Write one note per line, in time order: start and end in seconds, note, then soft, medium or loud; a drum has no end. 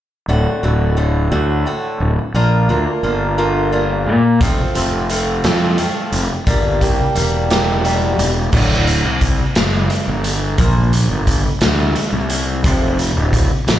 0.28 0.44 D1 medium
0.28 0.63 A2 medium
0.28 0.63 D3 medium
0.28 0.63 A3 medium
0.28 0.62 F#4 medium
0.63 1.28 D1 medium
0.63 0.96 A2 medium
0.63 0.96 D3 medium
0.63 0.96 A3 medium
0.63 0.97 F#4 medium
0.97 1.31 A2 medium
0.97 1.31 D3 medium
0.97 1.30 A3 medium
0.97 1.30 F#4 medium
1.32 1.63 D2 medium
1.32 1.65 A2 medium
1.32 1.66 D3 medium
1.32 1.66 A3 medium
1.32 1.66 F#4 medium
1.66 2.11 A2 medium
1.66 2.11 D3 medium
1.66 2.11 A3 medium
1.66 2.11 F#4 medium
2.00 2.16 D1 medium
2.34 2.66 A#1 loud
2.34 2.69 A#3 medium
2.34 2.69 D4 medium
2.34 2.68 F4 medium
2.34 2.68 A#4 medium
2.69 2.85 D2 medium
2.69 3.02 A#3 medium
2.69 3.03 D4 medium
2.69 3.03 F4 medium
2.69 3.03 A#4 medium
3.03 4.07 G1 medium
3.03 3.38 A#3 medium
3.03 3.38 D4 medium
3.03 3.37 F4 medium
3.03 3.37 A#4 medium
3.38 3.71 A#3 medium
3.38 3.72 D4 medium
3.38 3.72 F4 medium
3.38 3.72 A#4 medium
3.72 4.17 A#3 medium
3.72 4.17 D4 medium
3.72 4.17 F4 medium
3.72 4.18 A#4 medium
4.06 4.38 A#2 medium
4.41 4.57 F1 medium
4.41 4.75 F3 medium
4.41 4.74 A3 medium
4.41 4.74 C4 medium
4.41 4.73 F4 medium
4.41 kick loud
4.41 closed hi-hat medium
4.75 5.40 F1 medium
4.75 5.09 F3 medium
4.75 5.09 A3 medium
4.75 5.10 C4 medium
4.75 5.09 F4 medium
4.75 closed hi-hat medium
5.09 5.44 F3 medium
5.09 5.43 A3 medium
5.09 5.43 C4 medium
5.09 5.43 F4 medium
5.09 closed hi-hat medium
5.44 5.76 F2 medium
5.44 5.76 F3 medium
5.44 5.77 A3 medium
5.44 5.77 C4 medium
5.44 5.78 F4 medium
5.44 snare loud
5.44 closed hi-hat medium
5.78 6.23 F3 medium
5.78 6.23 A3 medium
5.78 6.23 C4 medium
5.78 6.23 F4 medium
5.78 closed hi-hat medium
6.12 6.28 F1 medium
6.12 closed hi-hat medium
6.47 6.78 G1 loud
6.47 6.81 G3 medium
6.47 6.81 A#3 medium
6.47 6.81 D4 medium
6.47 6.80 G4 medium
6.47 kick loud
6.47 closed hi-hat medium
6.81 6.97 C2 medium
6.81 7.14 G3 soft
6.81 7.14 A#3 medium
6.81 7.15 D4 medium
6.81 7.15 G4 medium
6.81 kick medium
6.81 closed hi-hat medium
7.15 8.14 E1 medium
7.15 7.50 G3 medium
7.15 7.50 A#3 medium
7.15 7.49 D4 medium
7.15 7.49 G4 medium
7.15 closed hi-hat medium
7.50 7.83 G3 medium
7.50 7.84 A#3 medium
7.50 7.84 D4 medium
7.50 7.84 G4 medium
7.50 snare loud
7.50 closed hi-hat medium
7.84 8.29 G3 medium
7.84 8.29 A#3 medium
7.84 8.29 D4 medium
7.84 8.29 G4 medium
7.84 closed hi-hat medium
8.18 8.50 E1 medium
8.18 closed hi-hat medium
8.52 9.00 D1 loud
8.52 8.85 D2 medium
8.52 8.85 A2 medium
8.52 8.85 D3 medium
8.52 kick loud
8.52 crash medium
8.87 9.18 D2 medium
8.87 9.18 A2 medium
8.87 closed hi-hat medium
9.05 9.36 C2 medium
9.21 9.52 D2 medium
9.21 9.53 A2 medium
9.21 kick medium
9.21 closed hi-hat medium
9.55 9.88 F#1 medium
9.55 9.86 D2 medium
9.55 9.87 A2 medium
9.55 snare loud
9.55 closed hi-hat medium
9.90 10.21 D2 medium
9.90 10.21 A2 medium
9.90 closed hi-hat medium
10.08 10.55 G1 medium
10.24 10.55 D2 medium
10.24 10.55 A2 medium
10.24 closed hi-hat medium
10.58 11.06 A#1 loud
10.58 10.91 A#2 medium
10.58 10.91 F3 medium
10.58 10.91 A#3 medium
10.58 kick loud
10.58 closed hi-hat medium
10.93 11.24 A#2 medium
10.93 11.24 F3 medium
10.93 closed hi-hat medium
11.10 11.41 G1 medium
11.27 11.58 A#2 medium
11.27 11.58 F3 medium
11.27 kick medium
11.27 closed hi-hat medium
11.61 11.93 D2 medium
11.61 11.92 A#2 medium
11.61 11.93 F3 medium
11.61 snare loud
11.61 closed hi-hat medium
11.95 12.27 A#2 medium
11.95 12.27 F3 medium
11.95 closed hi-hat medium
12.12 12.60 C2 medium
12.30 12.61 A#2 medium
12.30 12.61 F3 medium
12.30 closed hi-hat medium
12.64 13.12 F1 loud
12.64 12.96 F2 medium
12.64 12.97 C3 medium
12.64 12.97 F3 medium
12.64 kick loud
12.64 closed hi-hat medium
12.98 13.29 F2 medium
12.98 13.30 C3 medium
12.98 closed hi-hat medium
13.16 13.47 D1 medium
13.33 13.64 F2 medium
13.33 13.64 C3 medium
13.33 kick medium
13.33 closed hi-hat medium
13.67 13.79 A1 medium
13.67 13.79 F2 medium
13.67 13.79 C3 medium
13.67 snare loud
13.67 closed hi-hat medium